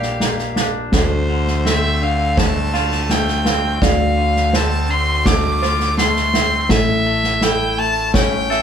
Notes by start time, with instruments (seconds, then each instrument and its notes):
Already playing: fingered electric bass A#1, clean electric guitar G3 A#3 D4 G4, felt piano D5, violin F5
0.02 snare
0.20 clean electric guitar A#3, snare
0.38 snare
0.56 clean electric guitar D4, felt piano F5, snare
0.92 clean electric guitar D2, fingered electric bass D2, felt piano A4, violin C5, kick, snare
1.29 clean electric guitar D3
1.47 snare
1.65 clean electric guitar C4, felt piano A4, violin E5, snare
2.02 clean electric guitar D3, violin F5
2.37 clean electric guitar A3, felt piano C5, violin A5, kick, snare
2.73 clean electric guitar F4, felt piano F5, snare
2.91 snare
3.09 clean electric guitar A3, violin G5, snare
3.28 snare
3.45 clean electric guitar C4, felt piano F5, snare
3.82 clean electric guitar D2, fingered electric bass D2, felt piano D5, violin F5, kick, snare
4.18 clean electric guitar D3
4.36 snare
4.53 clean electric guitar C4, felt piano C5, violin A5, snare
4.90 clean electric guitar D3, violin C6
5.25 clean electric guitar A3, felt piano A4, violin D6, kick, snare
5.62 clean electric guitar F4, felt piano C5, snare
5.80 snare
5.98 clean electric guitar A3, violin C6, snare
6.16 snare
6.34 clean electric guitar C4, felt piano E5, snare
6.69 fingered electric bass A1, clean electric guitar A2, felt piano A4, violin E5, kick, snare
7.06 clean electric guitar A3
7.24 snare
7.41 clean electric guitar E4, felt piano A4, violin G5, snare
7.78 clean electric guitar A3, violin A5
8.14 clean electric guitar C#4, felt piano C#5, violin G5, kick, snare
8.50 clean electric guitar A4, felt piano E5, snare